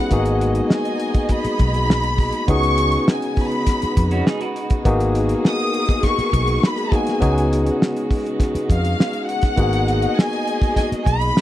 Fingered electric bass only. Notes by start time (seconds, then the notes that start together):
0.12 G#1
1.45 muted fingered electric bass stroke
1.60 B1
2.48 C#2
3.83 muted fingered electric bass stroke
3.97 F2
4.85 G#1
6.18 muted fingered electric bass stroke
6.33 B1
7.21 C#2
8.55 muted fingered electric bass stroke
8.70 F2
9.57 G#1
10.92 muted fingered electric bass stroke
11.07 B1